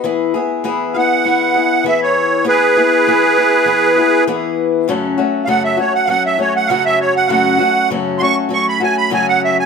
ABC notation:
X:1
M:4/4
L:1/16
Q:1/4=99
K:E
V:1 name="Accordion"
z6 [=f^f]6 e c3 | [GB]12 z4 | z4 [=f^f] e c f [=f^f] e c f [=f^f] e c f | [=f^f]4 z2 [=c'^c'] z c' b g b g f e g |]
V:2 name="Steel-string acoustic guitar"
[E,B,EG]2 [B,EG]2 [E,B,EG]2 [B,EG]2 [E,B,EG]2 [B,EG]2 [E,B,EG]4 | [E,B,EG]2 [B,EG]2 [E,B,EG]2 [B,EG]2 [E,B,EG]2 [B,EG]2 [E,B,EG]4 | [F,,C,F,A,CF]2 [F,A,CF]2 [F,,C,F,A,CF]2 [F,A,CF]2 [F,A,CF]2 [F,A,CF]2 [F,,C,F,A,CF]4 | [F,,C,F,A,CF]2 [F,A,CF]2 [F,,C,F,A,CF]2 [F,A,CF]2 [F,A,CF]2 [F,A,CF]2 [F,,C,F,A,CF]4 |]